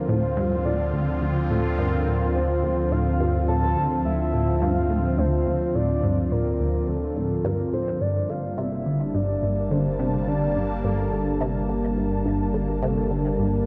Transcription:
0.00 7.98 D2 medium
0.00 7.97 D3 medium
0.00 7.97 F3 medium
0.00 7.97 C4 medium
0.00 7.97 F4 medium
0.00 0.10 A#4 medium
0.08 0.23 A2 medium
0.08 0.65 C5 loud
0.37 0.52 G2 loud
0.65 0.80 A2 medium
0.65 1.05 D5 loud
0.93 1.16 D2 medium
1.22 1.44 D2 medium
1.50 1.65 A2 medium
1.50 1.80 A4 medium
1.78 1.93 G2 medium
1.78 2.34 A#4 loud
2.07 2.22 A2 medium
2.35 2.57 D2 medium
2.35 2.93 C5 loud
2.63 2.86 D2 medium
2.92 3.06 A2 medium
2.92 3.48 F5 loud
3.20 3.35 G2 loud
3.48 3.63 A2 medium
3.48 4.01 A5 loud
3.77 3.99 D2 medium
4.05 4.27 D2 medium
4.05 4.63 E5 loud
4.33 4.48 A2 medium
4.62 4.76 G2 loud
4.62 5.20 F5 loud
4.90 5.05 A2 medium
5.18 5.40 D2 medium
5.18 5.76 C5 loud
5.47 5.69 D2 medium
5.75 5.90 A2 medium
5.75 6.33 D5 loud
6.03 6.18 G2 loud
6.31 6.46 A2 medium
6.31 6.89 A#4 medium
6.60 6.82 D2 medium
6.88 7.10 D2 medium
6.88 7.46 A4 loud
7.16 7.31 A2 medium
7.45 7.59 G2 loud
7.45 7.72 A#4 medium
7.73 7.88 A2 medium
7.73 8.03 C5 medium
8.01 13.66 G1 medium
8.01 8.23 G2 medium
8.01 13.66 G3 medium
8.01 13.66 A#3 medium
8.01 13.66 D4 medium
8.01 8.31 D5 loud
8.01 13.66 A5 medium
8.29 8.44 D3 medium
8.29 8.59 F5 medium
8.58 8.73 C3 loud
8.58 9.16 E5 loud
8.86 9.01 D3 medium
9.14 9.37 G2 medium
9.14 9.72 D5 loud
9.43 9.65 G2 medium
9.71 9.86 D3 medium
9.71 10.27 C5 medium
9.99 10.14 C3 loud
10.28 10.42 D3 medium
10.28 10.86 D5 loud
10.56 10.78 G2 medium
10.84 11.06 G2 medium
10.84 11.43 A4 medium
11.12 11.27 D3 medium
11.41 11.56 C3 loud
11.41 12.26 A#4 medium
11.69 11.84 D3 medium
11.97 12.20 G2 medium
12.26 12.48 G2 medium
12.54 12.69 D3 medium
12.82 12.97 C3 loud
12.82 13.12 A4 medium
13.11 13.25 D3 medium
13.11 13.66 A#4 medium
13.39 13.61 G2 medium

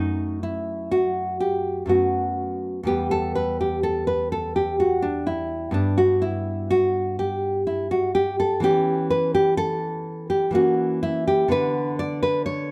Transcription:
0.00 1.84 F#2 soft
0.00 1.85 A3 soft
0.00 0.41 D#4 medium
0.43 0.90 E4 medium
0.91 1.39 F#4 medium
1.40 1.88 G4 medium
1.86 2.83 F#2 soft
1.86 2.84 A3 soft
1.86 2.84 B3 soft
1.86 2.84 F#4 medium
2.83 5.70 E2 soft
2.83 5.71 G3 soft
2.83 5.71 B3 soft
2.83 3.11 G4 medium
3.11 3.35 A4 medium
3.35 3.60 B4 medium
3.61 3.83 G4 medium
3.83 4.07 A4 medium
4.07 4.32 B4 medium
4.32 4.55 A4 medium
4.56 4.79 G4 medium
4.80 5.04 F#4 medium
5.02 5.27 D4 medium
5.27 5.73 E4 medium
5.71 8.58 G2 soft
5.71 8.58 B3 soft
5.71 5.99 D4 medium
5.98 6.23 F#4 medium
6.22 6.69 E4 medium
6.71 7.17 F#4 medium
7.19 7.66 G4 medium
7.67 7.91 E4 medium
7.91 8.14 F#4 medium
8.15 8.39 G4 medium
8.40 8.63 A4 medium
8.60 10.49 E3 medium
8.60 10.50 B3 soft
8.60 10.50 C#4 soft
8.60 9.10 G4 medium
9.10 9.34 B4 medium
9.35 9.57 G4 medium
9.57 10.27 A4 medium
10.30 10.54 G4 medium
10.51 11.47 E3 soft
10.51 11.47 A#3 soft
10.51 11.48 C#4 soft
10.55 11.01 F#4 medium
11.03 11.27 E4 medium
11.27 11.51 G4 medium
11.48 12.71 D3 medium
11.48 12.71 B3 soft
11.48 12.71 D4 soft
11.48 11.98 B4 medium
11.99 12.22 D5 medium
12.23 12.45 B4 medium
12.46 12.71 C#5 medium

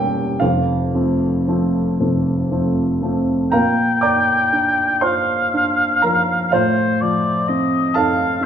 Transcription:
0.00 0.44 E1 soft
0.00 0.44 E2 medium
0.00 0.45 G3 soft
0.00 0.45 A#3 soft
0.00 0.45 C#4 soft
0.00 0.38 G4 medium
0.00 0.44 A4 medium
0.00 0.41 G5 medium
0.00 0.45 A5 medium
0.40 0.93 F1 soft
0.40 0.93 F2 medium
0.40 1.95 F4 soft
0.40 1.99 F5 medium
0.94 1.44 F3 soft
0.94 1.44 A3 soft
0.94 1.44 C4 soft
1.48 1.96 F3 soft
1.48 1.96 A3 soft
1.48 1.96 C4 soft
2.00 2.49 F1 soft
2.00 2.49 F2 soft
2.51 2.98 F3 soft
2.51 2.98 A3 soft
2.51 2.98 C4 soft
3.02 3.49 F3 soft
3.02 3.49 A3 soft
3.02 3.49 C4 soft
3.51 6.49 A#2 soft
3.51 3.99 A#4 medium
3.51 3.99 F5 medium
3.51 5.05 G5 medium
3.51 4.01 A#5 medium
4.01 4.83 A#3 soft
4.01 4.99 D5 medium
4.01 4.99 A#5 medium
4.01 5.02 D6 medium
4.53 5.33 D4 soft
5.01 5.83 F4 soft
5.01 5.99 C5 soft
5.01 6.53 F5 medium
5.01 6.03 C6 medium
5.54 6.34 D4 soft
6.02 6.53 F3 soft
6.02 6.49 A#4 medium
6.02 6.52 A#5 medium
6.52 8.46 A2 medium
6.52 7.91 F4 medium
6.52 7.91 C5 medium
6.52 7.03 C5 medium
6.52 7.94 F5 medium
7.01 7.76 F3 soft
7.01 7.50 D5 medium
7.49 8.23 C4 soft
7.49 7.97 D#5 medium
7.94 8.46 D#4 soft
7.94 8.46 A4 medium
7.94 8.45 F5 medium
7.94 8.46 F5 medium
7.94 8.46 A5 medium
8.41 8.46 C4 soft

